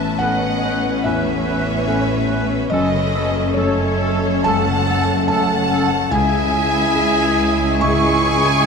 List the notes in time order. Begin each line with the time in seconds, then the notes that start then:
Already playing: A1 A2 E3 A3 B3 C#4 E4 B4 E5 F#5 A5
0.00 C#4
0.19 B3 C#4 B4 D#5 F#5
0.23 A4
0.41 A4
0.62 C#4 B4
0.84 C#4
1.04 E2 A2 C#4 B4 C#5 E5
1.26 E3
1.46 A3 C#4 B4
1.87 B3 C#4 A4 B4
2.07 A4
2.29 C#4 B4
2.50 C#4
2.70 F#1 F#2 A3 C#4 A4 B4 D#5
2.93 C#3
3.14 A3 C#4 A4
3.35 C#4
3.54 A3 C#4 A4 C#5
3.58 A4
4.01 C#4 A4 C#5
4.25 C#4
4.44 C#2 F#2 C#4 A4 F#5 A5
4.69 C#3
4.87 A3 C#4 A4
5.28 A3 C#4 A4 C#5 F#5 A5
5.52 A4
5.70 C#4 C#5
5.74 A4
5.93 C#4
6.11 C#2 C#3 G#3 E4 G#4 E5 G#5
6.34 C#4
6.54 G#3
6.75 E4
6.95 G#3 C#4 E4 C#5
7.39 C#5
7.61 E4
7.81 G#2 C#3 E4 G#4 G#5 C#6
8.03 C#4
8.25 G#3